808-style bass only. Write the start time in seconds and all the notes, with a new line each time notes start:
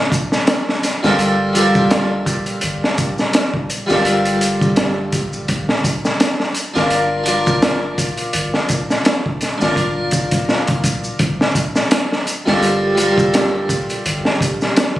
1.04 G1
2.63 G1
3.90 G1
4.62 G1
5.49 G1
6.76 G1
8.34 G1
9.62 G1
10.13 D1
10.69 D1
11.20 G1
12.47 G1
14.06 G1